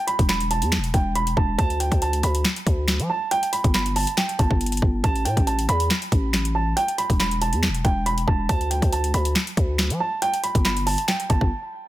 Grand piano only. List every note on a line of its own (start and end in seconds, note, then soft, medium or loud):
0.07 0.25 B5 medium
0.29 0.47 B5 medium
0.51 0.91 A5 medium
0.94 1.12 G5 medium
1.15 1.33 B5 medium
1.37 1.55 A5 medium
1.58 1.76 A5 loud
1.80 1.98 G5 medium
2.02 2.20 A5 medium
2.23 3.06 B5 medium
3.10 3.28 A5 medium
3.31 3.49 G5 loud
3.53 3.71 B5 medium
3.74 3.92 B5 medium
3.96 4.14 A5 medium
4.17 4.35 G5 medium
4.39 5.00 A5 medium
5.04 5.22 A5 loud
5.25 5.43 G5 medium
5.47 5.65 A5 medium
5.69 6.51 B5 medium
6.55 6.73 A5 medium
6.77 6.95 G5 medium
6.98 7.16 B5 medium
7.20 7.38 B5 medium
7.41 7.82 A5 medium
7.85 8.03 G5 medium
8.06 8.24 B5 medium
8.27 8.46 A5 medium
8.49 8.67 A5 loud
8.71 8.89 G5 medium
8.93 9.10 A5 medium
9.14 9.96 B5 medium
10.00 10.18 A5 medium
10.22 10.40 G5 loud
10.43 10.61 B5 medium
10.65 10.83 B5 medium
10.87 11.05 A5 medium
11.08 11.26 G5 medium
11.30 11.88 A5 medium